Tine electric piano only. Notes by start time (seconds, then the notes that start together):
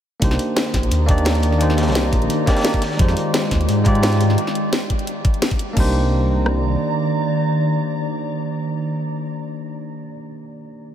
0.20 A#3 D4 D#4 G4
0.24 C5
1.06 A#3 D4 D#4 G4
1.11 D5
1.58 A#3 D4 D#4 G4
1.63 C5
2.46 A#3 D4 D#4 G4 D5
2.97 G#3 D#4 F4 G4
3.01 C5
3.84 G#3 D#4 F4 G4
3.88 D5
5.73 A#3 D4 D#4
5.78 G4 C5